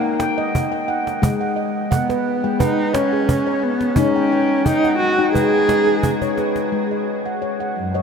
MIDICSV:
0, 0, Header, 1, 4, 480
1, 0, Start_track
1, 0, Key_signature, 5, "minor"
1, 0, Tempo, 688073
1, 852, Time_signature, 4, 2, 24, 8
1, 5596, End_track
2, 0, Start_track
2, 0, Title_t, "Handpan"
2, 0, Program_c, 0, 114
2, 0, Note_on_c, 0, 56, 83
2, 0, Note_on_c, 0, 78, 72
2, 0, Note_on_c, 0, 79, 63
2, 127, Note_off_c, 0, 79, 0
2, 136, Note_on_c, 0, 79, 82
2, 263, Note_on_c, 0, 75, 74
2, 264, Note_off_c, 0, 78, 0
2, 374, Note_off_c, 0, 79, 0
2, 501, Note_on_c, 0, 79, 69
2, 614, Note_off_c, 0, 75, 0
2, 615, Note_on_c, 0, 78, 71
2, 740, Note_off_c, 0, 79, 0
2, 825, Note_off_c, 0, 56, 0
2, 851, Note_on_c, 0, 56, 89
2, 973, Note_off_c, 0, 78, 0
2, 981, Note_on_c, 0, 78, 59
2, 1090, Note_on_c, 0, 75, 59
2, 1324, Note_off_c, 0, 78, 0
2, 1332, Note_on_c, 0, 78, 75
2, 1459, Note_off_c, 0, 75, 0
2, 1461, Note_on_c, 0, 71, 71
2, 1572, Note_off_c, 0, 78, 0
2, 1693, Note_off_c, 0, 56, 0
2, 1701, Note_on_c, 0, 79, 62
2, 1702, Note_on_c, 0, 56, 78
2, 1805, Note_off_c, 0, 71, 0
2, 1813, Note_on_c, 0, 71, 70
2, 1941, Note_off_c, 0, 56, 0
2, 2051, Note_on_c, 0, 73, 79
2, 2053, Note_off_c, 0, 79, 0
2, 2180, Note_off_c, 0, 71, 0
2, 2181, Note_on_c, 0, 68, 65
2, 2292, Note_off_c, 0, 73, 0
2, 2420, Note_on_c, 0, 73, 77
2, 2533, Note_off_c, 0, 68, 0
2, 2659, Note_off_c, 0, 73, 0
2, 2769, Note_on_c, 0, 56, 80
2, 2769, Note_on_c, 0, 63, 88
2, 2901, Note_on_c, 0, 79, 60
2, 3007, Note_off_c, 0, 79, 0
2, 3010, Note_off_c, 0, 63, 0
2, 3015, Note_on_c, 0, 79, 66
2, 3243, Note_off_c, 0, 79, 0
2, 3251, Note_on_c, 0, 79, 76
2, 3378, Note_on_c, 0, 78, 64
2, 3491, Note_off_c, 0, 79, 0
2, 3617, Note_on_c, 0, 63, 83
2, 3619, Note_on_c, 0, 79, 64
2, 3711, Note_off_c, 0, 56, 0
2, 3727, Note_on_c, 0, 71, 73
2, 3730, Note_off_c, 0, 63, 0
2, 3730, Note_on_c, 0, 56, 77
2, 3731, Note_off_c, 0, 78, 0
2, 3859, Note_off_c, 0, 79, 0
2, 3959, Note_off_c, 0, 56, 0
2, 3967, Note_on_c, 0, 56, 75
2, 4095, Note_on_c, 0, 68, 68
2, 4097, Note_off_c, 0, 71, 0
2, 4210, Note_off_c, 0, 56, 0
2, 4338, Note_on_c, 0, 73, 68
2, 4450, Note_off_c, 0, 68, 0
2, 4454, Note_on_c, 0, 71, 65
2, 4579, Note_off_c, 0, 73, 0
2, 4689, Note_on_c, 0, 56, 67
2, 4821, Note_off_c, 0, 71, 0
2, 4822, Note_on_c, 0, 75, 51
2, 5062, Note_on_c, 0, 78, 52
2, 5175, Note_off_c, 0, 75, 0
2, 5175, Note_on_c, 0, 73, 66
2, 5295, Note_off_c, 0, 78, 0
2, 5304, Note_on_c, 0, 78, 56
2, 5415, Note_off_c, 0, 73, 0
2, 5541, Note_on_c, 0, 75, 55
2, 5545, Note_on_c, 0, 73, 66
2, 5596, Note_off_c, 0, 56, 0
2, 5596, Note_off_c, 0, 73, 0
2, 5596, Note_off_c, 0, 75, 0
2, 5596, Note_off_c, 0, 78, 0
2, 5596, End_track
3, 0, Start_track
3, 0, Title_t, "Cello"
3, 0, Program_c, 1, 42
3, 0, Note_on_c, 1, 58, 104
3, 384, Note_off_c, 1, 58, 0
3, 1338, Note_on_c, 1, 59, 85
3, 1809, Note_on_c, 1, 63, 95
3, 1819, Note_off_c, 1, 59, 0
3, 2043, Note_on_c, 1, 61, 94
3, 2054, Note_off_c, 1, 63, 0
3, 2531, Note_on_c, 1, 59, 95
3, 2541, Note_off_c, 1, 61, 0
3, 2762, Note_on_c, 1, 61, 95
3, 2772, Note_off_c, 1, 59, 0
3, 3242, Note_on_c, 1, 63, 109
3, 3252, Note_off_c, 1, 61, 0
3, 3476, Note_off_c, 1, 63, 0
3, 3480, Note_on_c, 1, 66, 92
3, 3709, Note_off_c, 1, 66, 0
3, 3721, Note_on_c, 1, 68, 101
3, 4419, Note_off_c, 1, 68, 0
3, 5420, Note_on_c, 1, 42, 71
3, 5596, Note_off_c, 1, 42, 0
3, 5596, End_track
4, 0, Start_track
4, 0, Title_t, "Cajon"
4, 138, Note_on_c, 9, 38, 64
4, 208, Note_off_c, 9, 38, 0
4, 383, Note_on_c, 9, 36, 57
4, 453, Note_off_c, 9, 36, 0
4, 624, Note_on_c, 9, 38, 21
4, 694, Note_off_c, 9, 38, 0
4, 747, Note_on_c, 9, 38, 46
4, 817, Note_off_c, 9, 38, 0
4, 859, Note_on_c, 9, 36, 72
4, 929, Note_off_c, 9, 36, 0
4, 1338, Note_on_c, 9, 36, 62
4, 1407, Note_off_c, 9, 36, 0
4, 1464, Note_on_c, 9, 38, 49
4, 1534, Note_off_c, 9, 38, 0
4, 1815, Note_on_c, 9, 36, 62
4, 1884, Note_off_c, 9, 36, 0
4, 2054, Note_on_c, 9, 38, 69
4, 2124, Note_off_c, 9, 38, 0
4, 2294, Note_on_c, 9, 36, 60
4, 2364, Note_off_c, 9, 36, 0
4, 2532, Note_on_c, 9, 38, 20
4, 2601, Note_off_c, 9, 38, 0
4, 2655, Note_on_c, 9, 38, 45
4, 2725, Note_off_c, 9, 38, 0
4, 2762, Note_on_c, 9, 36, 66
4, 2832, Note_off_c, 9, 36, 0
4, 2901, Note_on_c, 9, 38, 20
4, 2970, Note_off_c, 9, 38, 0
4, 3013, Note_on_c, 9, 38, 19
4, 3083, Note_off_c, 9, 38, 0
4, 3143, Note_on_c, 9, 38, 18
4, 3212, Note_off_c, 9, 38, 0
4, 3249, Note_on_c, 9, 36, 60
4, 3319, Note_off_c, 9, 36, 0
4, 3381, Note_on_c, 9, 38, 44
4, 3451, Note_off_c, 9, 38, 0
4, 3735, Note_on_c, 9, 36, 52
4, 3804, Note_off_c, 9, 36, 0
4, 3970, Note_on_c, 9, 38, 62
4, 4040, Note_off_c, 9, 38, 0
4, 4209, Note_on_c, 9, 36, 56
4, 4278, Note_off_c, 9, 36, 0
4, 4336, Note_on_c, 9, 36, 35
4, 4406, Note_off_c, 9, 36, 0
4, 4447, Note_on_c, 9, 38, 38
4, 4517, Note_off_c, 9, 38, 0
4, 4575, Note_on_c, 9, 38, 43
4, 4644, Note_off_c, 9, 38, 0
4, 5596, End_track
0, 0, End_of_file